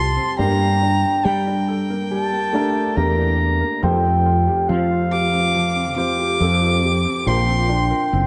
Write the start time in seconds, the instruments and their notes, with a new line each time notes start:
Already playing: grand piano F1 F2 G3 C4 F4 C5, fretless electric bass C2, felt piano F3 C4 F4 G4, clarinet A5, violin C6
0.17 felt piano C4
0.37 grand piano G1 G2 A#3 D4 G4 A#4, fretless electric bass G2, felt piano G3, clarinet G5, violin A#5
0.82 felt piano D4
1.25 fretless electric bass G3, violin G5
1.47 felt piano D4
1.68 felt piano A4
1.90 felt piano A#3
2.11 felt piano G3, clarinet A5
2.33 felt piano A#3
2.53 grand piano A3 D4 G4 A#4, felt piano D4
2.96 fretless electric bass E2, grand piano A#3 D4 G4 A#4, felt piano A#3, clarinet A#5
3.18 felt piano D4
3.61 felt piano A#3
3.82 grand piano F1 F2 F3 C4 G4 C5, fretless electric bass F2, felt piano F3, clarinet G5
4.04 felt piano C4
4.25 felt piano F4
4.47 felt piano G4
4.69 fretless electric bass F3, felt piano C4, clarinet F5
4.90 felt piano F4
5.12 felt piano G4, violin D6
5.33 felt piano C4
5.55 felt piano F3
5.76 felt piano C4
5.96 grand piano F3 C4 G4 C5, felt piano F4, violin D6
6.19 felt piano G4
6.40 fretless electric bass F2, grand piano F3 C4 G4 A4, felt piano C4
6.62 felt piano F4
6.83 felt piano G4
7.05 felt piano C4
7.25 fretless electric bass A#1, grand piano A#1 A#2 F3 D4 A#4 C5, felt piano F3, clarinet G5, violin C6
7.48 felt piano C4
7.69 felt piano D4
7.90 felt piano A#4
8.13 fretless electric bass F#1, felt piano C4